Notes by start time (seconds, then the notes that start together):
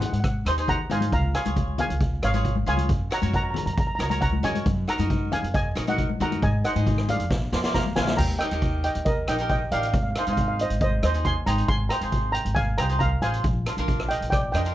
Already playing: D#4 G#4 C5
0.01 closed hi-hat, high conga, low conga
0.06 F#5
0.13 G#2 F#5, closed hi-hat
0.20 F#5, kick, cross-stick, closed hi-hat
0.28 F#5
0.45 D#2 D#4 G#4 C5, cross-stick, closed hi-hat
0.58 D#4 G#4 C5, closed hi-hat
0.68 F#5 A#5, kick, closed hi-hat, low conga
0.90 G#2 D#4 G#4 C5 F5 G#5, closed hi-hat, low conga
1.01 closed hi-hat, high conga
1.12 C#2 F5 A#5, kick, closed hi-hat
1.35 F4 G#4 C#5 F5 G#5, cross-stick, closed hi-hat
1.45 C#2 F4 G#4 C#5, closed hi-hat, high conga
1.56 kick, closed hi-hat
1.78 F5 G#5, closed hi-hat, low conga
1.90 C#2, closed hi-hat
2.01 kick, closed hi-hat
2.23 G#1 F4 G#4 C#5 F5, cross-stick, closed hi-hat
2.34 F4 G#4 C#5, closed hi-hat, high conga
2.45 kick, closed hi-hat
2.56 high conga
2.66 C#2 F4 G#4 C#5 F5 G#5, closed hi-hat
2.77 closed hi-hat, high conga
2.89 F#2, kick, closed hi-hat
3.11 F#4 A#4 C#5 F#5 A#5, cross-stick, closed hi-hat
3.22 F#2 F#4 A#4 C#5, closed hi-hat, high conga
3.33 F#5 A#5, kick, closed hi-hat
3.44 A#5
3.51 A#5, low conga
3.56 A#5, closed hi-hat
3.66 F#2 A#5, closed hi-hat
3.73 A#5
3.78 A#5, kick, closed hi-hat
3.87 A#5
3.95 C#2 A#5
3.99 F#4 A#4 C#5 A#5, cross-stick, closed hi-hat
4.10 F#4 A#4 C#5 A#5, closed hi-hat, high conga
4.21 F#5 A#5, kick, closed hi-hat
4.33 high conga
4.43 F#2 F#4 A#4 C#5 D#5 G#5, closed hi-hat, low conga
4.55 closed hi-hat, high conga
4.66 F#2, kick, closed hi-hat
4.88 D#4 F#4 A#4 F#5 A#5, cross-stick, closed hi-hat
4.98 F#2 D#4 F#4 A#4, closed hi-hat, high conga
5.10 kick, closed hi-hat
5.32 F5 G#5, closed hi-hat, low conga
5.43 F#2, closed hi-hat
5.54 D#5 G#5, kick, closed hi-hat
5.75 A#1 D#4 F#4 A#4, cross-stick, closed hi-hat
5.87 D#4 F#4 A#4 D#5 F#5, closed hi-hat, high conga
5.98 kick, closed hi-hat
6.09 high conga
6.20 F#2 D#4 F#4 A#4 F#5 A#5, closed hi-hat, low conga
6.32 closed hi-hat, high conga
6.42 G#2 D#5 G#5, kick, closed hi-hat
6.64 D#4 G#4 C5 D#5 F#5, cross-stick, closed hi-hat
6.76 G#2 D#4 G#4 C5, closed hi-hat, high conga
6.87 kick, closed hi-hat, low conga
6.98 cross-stick
7.08 D5 F5, closed hi-hat, high conga, low conga
7.20 F2, closed hi-hat
7.30 A#1, kick, snare
7.52 F2 F4 A#4 D5, snare
7.64 F4 A#4 D5, snare
7.74 F5 A#5, kick, snare, low conga
7.86 high conga
7.96 A#1 F4 A#4 D5 F5 G#5, snare, low conga
8.07 snare, high conga
8.17 D#2 G5 A#5, kick, crash
8.39 D#4 G4 A#4 D#5 G5, cross-stick, closed hi-hat
8.51 D#2 D#4 G4 A#4, closed hi-hat
8.62 kick, closed hi-hat
8.84 D#5 G5, closed hi-hat
8.95 D#2, closed hi-hat
9.05 A#4 D#5, kick, closed hi-hat
9.28 A#1 D#4 G4 A#4 D#5 G5, cross-stick, closed hi-hat
9.38 D#4 G4 A#4, closed hi-hat
9.49 D#5 G5, kick, closed hi-hat
9.71 A1 D#4 G4 A#4 D5 F5, closed hi-hat
9.80 F5, closed hi-hat
9.87 F5
9.93 G#1 F5, kick, closed hi-hat
10.03 F5
10.11 F5
10.15 D#4 G#4 C5 F5, cross-stick, closed hi-hat
10.25 G#1 D#4 G#4 C5 F5, closed hi-hat
10.33 F5
10.37 F5, kick, closed hi-hat
10.48 F5
10.59 C5 D#5, closed hi-hat
10.70 G#1, closed hi-hat
10.81 C5 D#5, kick, closed hi-hat
11.03 D#2 D#4 G#4 C5 D#5, cross-stick, closed hi-hat
11.14 D#4 G#4 C5, closed hi-hat
11.25 G#5 C6, kick, closed hi-hat
11.46 G#1 D#4 G#4 C5 G5 A#5, closed hi-hat
11.58 closed hi-hat
11.68 G#1 G#5 C6, kick, closed hi-hat
11.89 F4 G#4 C5 G5 A#5, cross-stick, closed hi-hat
12.01 G#1 F4 G#4 C5, closed hi-hat
12.12 kick, closed hi-hat
12.32 G5 A#5, closed hi-hat
12.45 G#1, closed hi-hat
12.55 F5 G#5, kick, closed hi-hat
12.78 C2 F4 G#4 C5 G5 A#5, cross-stick, closed hi-hat
12.89 F4 G#4 C5, closed hi-hat
12.99 F5 A#5, kick, closed hi-hat
13.22 A1 F4 G#4 C5 F5 G#5, closed hi-hat
13.34 closed hi-hat
13.44 A#1, kick, closed hi-hat
13.66 D4 F4 A#4, cross-stick, closed hi-hat
13.77 A#1 D4 F4 A#4, closed hi-hat
13.88 kick, closed hi-hat
14.00 cross-stick
14.09 D#5 G5, closed hi-hat
14.21 A#1, closed hi-hat
14.30 D5 G5, kick, cross-stick, closed hi-hat
14.52 F2 D4 F4 A#4 D#5 G5, cross-stick, closed hi-hat
14.65 D4 F4 A#4, closed hi-hat